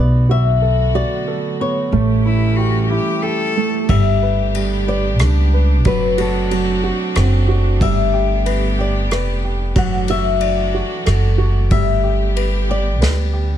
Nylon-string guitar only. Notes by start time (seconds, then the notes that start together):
Already playing: D5
0.31 E5
0.95 D5
1.61 C#5
3.89 E5
4.88 D5
5.87 B4
6.20 A4
7.82 E5
8.80 D5
9.78 F#5
10.10 E5
11.71 E5
12.71 D5